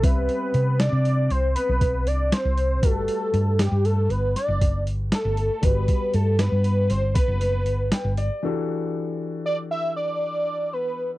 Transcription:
<<
  \new Staff \with { instrumentName = "Analog synth lead" } { \time 11/8 \key g \major \tempo 4 = 118 b'4. d''4 c''8 b'4 d''8 c''4 | a'4. g'8 a'8 b'8 d''4 r8 a'4 | b'4 a'8 b'4 c''8 b'2 r8 | r2 d''8 e''8 d''4. b'8. r16 | }
  \new Staff \with { instrumentName = "Grand piano" } { \time 11/8 \key g \major << { r1 r4. | r1 r4. | r1 r8 g''8 d''8 | r1 r4. | } \\ { <g c' e''>1~ <g c' e''>4. | <g fis' b'>1~ <g fis' b'>4. | <g fis' b'>1~ <g fis' b'>4. | <e d' fis' g' a'>1~ <e d' fis' g' a'>4. | } >> }
  \new Staff \with { instrumentName = "Fingered electric bass" } { \clef bass \time 11/8 \key g \major c,8 r8 c8. c8. c,8 r16 b,,8. c,8 r16 c,8. | g,,8 r8 g,8. g,8. g,,8 r16 fis,,8. g,,8 r16 g,,8 r16 | g,,8 r8 g,8. g,8. g,,8 r16 fis,,8. g,,8 r16 g,,8 r16 | r1 r4. | }
  \new DrumStaff \with { instrumentName = "Drums" } \drummode { \time 11/8 <hh bd>8 hh8 hh8 <hh sn>8 hh8 hh8 hh8 <hh bd>8 hh8 <hh sn>8 hh8 | <hh bd>8 hh8 hh8 <hh sn>8 hh8 hh8 <hh sn>8 <hh bd>8 hh8 <hh sn>8 hh8 | <hh bd>8 <hh bd>8 hh8 <hh sn>8 hh8 <hh sn>8 <hh bd>8 <hh sn>8 hh8 <hh sn>8 hh8 | r4. r4. r4. r4 | }
>>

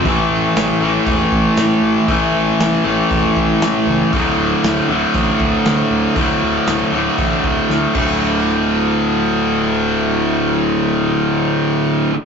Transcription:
<<
  \new Staff \with { instrumentName = "Distorted electric guitar" } { \clef bass \time 4/4 \key a \phrygian \tempo 4 = 118 <a, e a>4. <a, e a>2~ <a, e a>8 | <a, e a>4. <a, e a>2~ <a, e a>8 | <d, a, d>4. <d, a, d>2~ <d, a, d>8 | <d, a, d>4. <d, a, d>2 <d, a, d>8~ |
<d, a, d>1~ | <d, a, d>1 | }
  \new Staff \with { instrumentName = "Distorted electric guitar" } { \clef bass \time 4/4 \key a \phrygian <a, e a>4. <a, e a>2~ <a, e a>8 | <a, e a>4. <a, e a>2~ <a, e a>8 | <d, a, d>4. <d, a, d>2~ <d, a, d>8 | <d, a, d>4. <d, a, d>2 <d, a, d>8~ |
<d, a, d>1~ | <d, a, d>1 | }
  \new Staff \with { instrumentName = "Picked electric bass" } { \clef bass \time 4/4 \key a \phrygian a,,8 a,,8 a,,8 a,,8 e,,8 a,,8 a,8 a,,8 | a,,8 a,,8 a,,8 a,,8 e,,8 a,,8 a,8 cis,8 | d,,8 d,,8 d,,8 d,,8 a,,8 d,,8 d,8 d,,8 | d,,8 d,,8 d,,8 d,,8 a,,8 d,,8 d,8 d,,8~ |
d,,1~ | d,,1 | }
  \new DrumStaff \with { instrumentName = "Drums" } \drummode { \time 4/4 <hho bd>4 <hho sn>4 <hho bd>8 bd8 <hho sn>4 | <hho bd>4 <hho sn>4 <hho bd>8 bd8 <hho sn>4 | <hho bd>4 <hho sn>4 <hho bd>8 bd8 <hho sn>4 | <hho bd>4 <hho sn>4 <hho bd>8 bd8 sn8 <cymc bd>8 |
r4 r4 r4 r4 | r4 r4 r4 r4 | }
>>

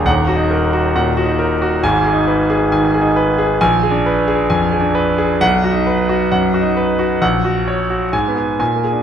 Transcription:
<<
  \new Staff \with { instrumentName = "Grand piano" } { \time 4/4 \key ees \minor \tempo 4 = 133 << { ges''4 r2. | aes''4 r2. | aes''4 r2. | fis''4 r2. |
ges''4 r4 aes''4 aes''4 | } \\ { r8 ges'8 bes'8 ges'8 ges''8 ges'8 bes'8 ges'8 | r8 aes'8 ces''8 aes'8 aes''8 aes'8 ces''8 aes'8 | r8 aes'8 ces''8 aes'8 aes''8 aes'8 ces''8 aes'8 | r8 fis'8 b'8 fis'8 fis''8 fis'8 b'8 fis'8 |
r8 ges'8 des''8 ges'8 r8 aes'8 r8 aes'8 | } >> }
  \new Staff \with { instrumentName = "Grand piano" } { \clef bass \time 4/4 \key ees \minor \tuplet 3/2 { <ees,, ees,>4 ees'8 } r4 \tuplet 3/2 { bes,4 ees'8 } r4 | \tuplet 3/2 { <aes,, aes,>4 ees'8 } r4 \tuplet 3/2 { ees4 ees'8 } r4 | \tuplet 3/2 { bes,,4 d'8 } r4 \tuplet 3/2 { f,4 d'8 } r4 | \tuplet 3/2 { b,,4 dis'8 } r4 \tuplet 3/2 { fis,4 dis'8 } r4 |
bes,,2 \tuplet 3/2 { aes,8 ces'4 bes,8 bes8 d'8 } | }
>>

